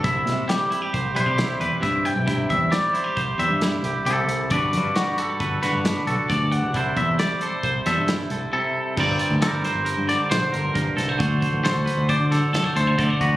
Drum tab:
CC |----------|----------|----------|----------|
HH |xxxxxxxxxx|xxxxxxxxxx|xxxxxxxxxx|xxxxxxxx--|
SD |-oo---o-o-|--o---o---|--o--oo-o-|--o--oo---|
BD |o---o---o-|oo--o-----|o---o---o-|oo--o-----|

CC |x---------|----------|
HH |-xxxxxxxxx|xxxxxxxxxx|
SD |--oo-oo--o|--o--oo---|
BD |o-------o-|oo--o---oo|